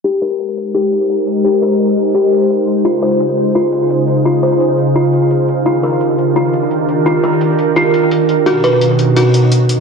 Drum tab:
HH |x-x-x-x-x-x-x-x-|x-x-x-x-x-x-x-x-|x-x-x-x-x-x-x-x-|x-x-x-xxx-x-x-x-|

HH |x-x-x-x-x-x-x-x-|x-x-x-x-x-x-x-x-|x-x-x-x-x-x-x-x-|